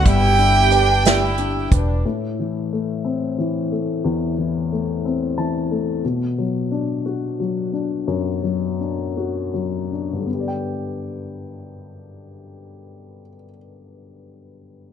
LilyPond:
<<
  \new Staff \with { instrumentName = "Violin" } { \time 6/8 \key g \major \tempo 4. = 59 g''2~ g''8 r8 | r2. | r2. | r2. |
r2. | r2. | r2. | }
  \new Staff \with { instrumentName = "French horn section" } { \time 6/8 \key g \major e'4 d'8 e'4 d'8 | r2. | r2. | r2. |
r2. | r2. | r2. | }
  \new Staff \with { instrumentName = "Analog synth pad" } { \time 6/8 \key g \major <d b g'>2. | r2. | r2. | r2. |
r2. | r2. | r2. | }
  \new Staff \with { instrumentName = "Upright piano" } { \time 6/8 \key g \major r2. | r2. | r2 a''4 | r2. |
r2. | r2. | r2. | }
  \new Staff \with { instrumentName = "Upright piano" } { \time 6/8 \key g \major g8 d'8 b'8 d''8 d'8 b'8 | a,8 e8 a8 c'8 e8 a8 | e,8 e8 a8 c'8 e8 a8 | b,8 fis8 d'8 fis'8 fis8 d'8 |
fis,8 fis8 d'8 fis'8 fis8 d'8 | <g, d b g' d'' g''>2.~ | <g, d b g' d'' g''>2. | }
  \new Staff \with { instrumentName = "Fingered electric bass" } { \clef bass \time 6/8 \key g \major g,,2~ g,,8 e,,8 | r2. | r2. | r2. |
r2. | r2. | r2. | }
  \new DrumStaff \with { instrumentName = "Drums" } \drummode { \time 6/8 <hh bd>8 hh8 hh8 <hh sn>8 hh8 <hh bd>8 | r4. r4. | r4. r4. | r4. r4. |
r4. r4. | r4. r4. | r4. r4. | }
>>